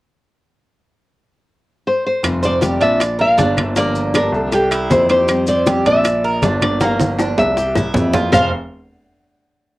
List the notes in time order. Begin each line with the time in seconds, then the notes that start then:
1.87 C5
2.06 C5
2.23 F1 F3 G3 C4 F4, high bongo, high conga, high timbale, claves, maracas
2.43 C5 D5, high bongo, high conga, maracas
2.61 F3 G3 C4 F4 G4, high bongo, high conga, high timbale, low timbale, maracas
2.80 A#1 D4 E5, high conga, high timbale, maracas
3.00 D5, muted nylon-string guitar stroke, high bongo, high conga, high timbale, claves, maracas
3.19 A#4 F5, high conga
3.38 G1 D3 A#3 D4 F4, high bongo, low bongo, high conga, high timbale, low timbale, maracas
3.56 A#3 D4 F4, high bongo, high conga, high timbale, claves, maracas
3.63 E5
3.75 D3 F3 A#3 D4 G4 D5, high bongo, high conga, high timbale, maracas
3.95 high bongo, high conga, maracas
4.14 D3 F3 A#3 D4 G4 A#4, high bongo, high conga, high timbale, low timbale, claves, maracas
4.32 C2 A4, high conga, maracas
4.52 G4, muted nylon-string guitar stroke, high bongo, high conga, high timbale, maracas
4.71 E4, high conga, high timbale, claves, maracas
4.90 F2 E3 A#3 C4 E4 C5, high bongo, low bongo, high conga, low timbale, maracas
5.09 E3 A#3 C4 E4 G4 C5, high bongo, high timbale, maracas
5.28 F3 G3 C4 F4, high bongo, high conga, high timbale, claves, maracas
5.47 C5 D5, high bongo, high conga, maracas
5.66 F3 G3 C4 F4 G4, high bongo, high conga, high timbale, low timbale, maracas
5.85 A#1 D4 E5, high conga, high timbale, maracas
6.04 muted nylon-string guitar stroke, high bongo, high conga, high timbale, claves, maracas
6.24 A#4, high conga
6.39 G1 D3 D5, high conga, high timbale, low timbale, maracas
6.43 A#3 D4 F4, high bongo, low bongo
6.61 A#3 D4 F4 D5, high bongo, high conga, high timbale, claves, maracas
6.80 D3 F3 A#3 D4 G4 F5, high bongo, high conga, high timbale, maracas
6.99 high bongo, high conga, high timbale, maracas
7.18 D3 F3 A#3 D4 G4, high bongo, high timbale, claves, maracas
7.38 C2 E5, low timbale, maracas
7.57 G4, muted nylon-string guitar stroke, high bongo, maracas
7.75 E4, high bongo, low conga, low timbale, claves, maracas
7.94 F2 E3 A#3 C4 E4, low bongo, low conga, low timbale, maracas
8.13 E3 A#3 C4 E4 F4, low bongo, low conga, low timbale, maracas
8.32 F1 F2 C3 F3 A3 C4 F4 C5 F5, low bongo, low conga, low timbale, claves, maracas